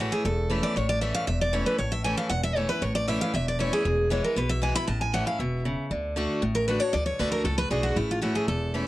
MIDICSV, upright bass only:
0, 0, Header, 1, 2, 480
1, 0, Start_track
1, 0, Key_signature, 3, "major"
1, 0, Tempo, 257290
1, 1427, Time_signature, 4, 2, 24, 8
1, 16555, End_track
2, 0, Start_track
2, 0, Title_t, "Upright bass"
2, 0, Program_c, 0, 32
2, 461, Note_on_c, 0, 28, 93
2, 1102, Note_off_c, 0, 28, 0
2, 1425, Note_on_c, 0, 33, 96
2, 2065, Note_off_c, 0, 33, 0
2, 2386, Note_on_c, 0, 28, 88
2, 3026, Note_off_c, 0, 28, 0
2, 3339, Note_on_c, 0, 33, 94
2, 3982, Note_off_c, 0, 33, 0
2, 4298, Note_on_c, 0, 28, 93
2, 4940, Note_off_c, 0, 28, 0
2, 5260, Note_on_c, 0, 33, 96
2, 5902, Note_off_c, 0, 33, 0
2, 6229, Note_on_c, 0, 28, 91
2, 6868, Note_off_c, 0, 28, 0
2, 7186, Note_on_c, 0, 28, 100
2, 7827, Note_off_c, 0, 28, 0
2, 8142, Note_on_c, 0, 35, 91
2, 8784, Note_off_c, 0, 35, 0
2, 9103, Note_on_c, 0, 33, 97
2, 9744, Note_off_c, 0, 33, 0
2, 10064, Note_on_c, 0, 28, 89
2, 10705, Note_off_c, 0, 28, 0
2, 11020, Note_on_c, 0, 38, 91
2, 11662, Note_off_c, 0, 38, 0
2, 11983, Note_on_c, 0, 33, 94
2, 12624, Note_off_c, 0, 33, 0
2, 12944, Note_on_c, 0, 38, 96
2, 13265, Note_off_c, 0, 38, 0
2, 13425, Note_on_c, 0, 38, 84
2, 13834, Note_off_c, 0, 38, 0
2, 13886, Note_on_c, 0, 37, 89
2, 14303, Note_off_c, 0, 37, 0
2, 14372, Note_on_c, 0, 35, 91
2, 14786, Note_off_c, 0, 35, 0
2, 14856, Note_on_c, 0, 33, 98
2, 15498, Note_off_c, 0, 33, 0
2, 15819, Note_on_c, 0, 28, 89
2, 16459, Note_off_c, 0, 28, 0
2, 16555, End_track
0, 0, End_of_file